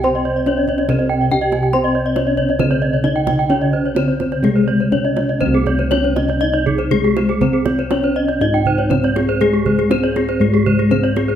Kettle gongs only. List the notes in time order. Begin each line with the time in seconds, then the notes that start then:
Already playing: C2
0.04 C5
0.47 C#4
0.89 C3
1.32 C#4
1.74 C5
2.17 C#4
2.59 C#3
3.04 C#4
3.50 C#4
3.96 C#4
4.43 C3
4.92 C#4
5.41 C4
5.46 C2
5.92 C#4
6.92 C#4
7.41 C4
7.92 C#4
8.41 G#2
8.90 C#4
9.41 G#4
9.91 C#4
10.41 G#2
10.91 C#4